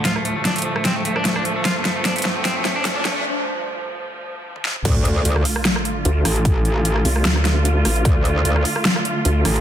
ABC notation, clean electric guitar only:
X:1
M:4/4
L:1/16
Q:"Swing 16ths" 1/4=150
K:Dm
V:1 name="Clean electric guitar"
F A, A, A, D A, A, A, C A, A, D A, D A, A, | F A, A, A, D A, A, A, C A, A, D A, D A, A, | z16 | z16 |
z16 | z16 |]